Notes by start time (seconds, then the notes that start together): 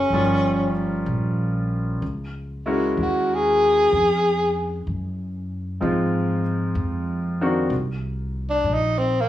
Already playing: C#4
0.10 G1 F3 G3 A#3
0.14 C#4 F4
1.06 A#1
2.02 C#2
2.66 G#3 A#3 C#4 E4 F#4
2.97 D#2
3.02 F#4
3.35 G#4
3.92 F2
4.87 F#2
5.81 G#2 F3 G#3 C4 D#4 F4
6.75 F2
7.41 D#3 A#3 C4 D4 F#4
7.70 C2
8.50 D4
8.64 A#1
8.74 D#4
8.98 C4
9.20 A#3